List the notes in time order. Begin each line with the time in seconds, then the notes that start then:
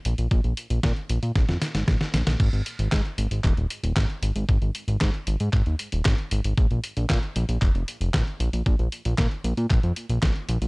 0.05 A#1, closed hi-hat
0.18 A#1, closed hi-hat
0.31 A#1, kick, closed hi-hat
0.44 A#1, closed hi-hat
0.57 closed hi-hat
0.70 A#1, closed hi-hat
0.83 A#2, kick, snare, closed hi-hat
0.96 closed hi-hat
1.09 A#1, closed hi-hat
1.23 A#2, closed hi-hat
1.36 A#1, kick, snare, closed hi-hat
1.49 F2, snare, closed hi-hat
1.62 snare, closed hi-hat
1.75 G#1, snare, closed hi-hat
1.88 A#1, kick, snare, closed hi-hat
2.01 snare, closed hi-hat
2.14 A#1, snare, closed hi-hat
2.27 A#1, snare, closed hi-hat
2.40 G#1, kick, closed hi-hat, crash
2.53 G#1, closed hi-hat
2.66 closed hi-hat
2.79 G#1, closed hi-hat
2.92 G#2, kick, snare, clap, closed hi-hat
3.05 closed hi-hat
3.18 G#1, closed hi-hat
3.31 G#1, closed hi-hat
3.44 D#1, kick, clap, closed hi-hat
3.57 D#1, closed hi-hat
3.70 closed hi-hat
3.83 D#1, closed hi-hat
3.96 G#1, kick, snare, clap, closed hi-hat
4.10 closed hi-hat
4.22 G#1, closed hi-hat
4.36 G#1, closed hi-hat
4.49 G#1, kick, closed hi-hat
4.62 G#1, closed hi-hat
4.75 closed hi-hat
4.88 G#1, closed hi-hat
5.01 G#2, kick, snare, clap, closed hi-hat
5.14 closed hi-hat
5.27 G#1, closed hi-hat
5.40 G#2, closed hi-hat
5.53 G#1, kick, clap, closed hi-hat
5.66 D#2, closed hi-hat
5.79 closed hi-hat
5.92 D#1, closed hi-hat
6.05 G#1, kick, snare, clap, closed hi-hat
6.18 closed hi-hat
6.31 G#1, closed hi-hat
6.44 G#1, closed hi-hat
6.57 A#1, kick, closed hi-hat
6.71 A#1, closed hi-hat
6.84 closed hi-hat
6.97 A#1, closed hi-hat
7.10 A#2, kick, snare, clap, closed hi-hat
7.23 closed hi-hat
7.36 A#1, closed hi-hat
7.49 A#1, closed hi-hat
7.62 F1, kick, clap, closed hi-hat
7.75 F1, closed hi-hat
7.88 closed hi-hat
8.01 F1, closed hi-hat
8.14 A#1, kick, snare, clap, closed hi-hat
8.27 closed hi-hat
8.40 A#1, closed hi-hat
8.53 A#1, closed hi-hat
8.66 A#1, kick, closed hi-hat
8.79 A#1, closed hi-hat
8.92 closed hi-hat
9.05 A#1, closed hi-hat
9.18 A#2, kick, snare, clap, closed hi-hat
9.31 closed hi-hat
9.44 A#1, closed hi-hat
9.57 A#2, closed hi-hat
9.70 A#1, kick, clap, closed hi-hat
9.83 F2, closed hi-hat
9.96 closed hi-hat
10.09 A#1, closed hi-hat
10.23 A#1, kick, snare, clap, closed hi-hat
10.36 closed hi-hat
10.49 A#1, closed hi-hat
10.61 A#1, closed hi-hat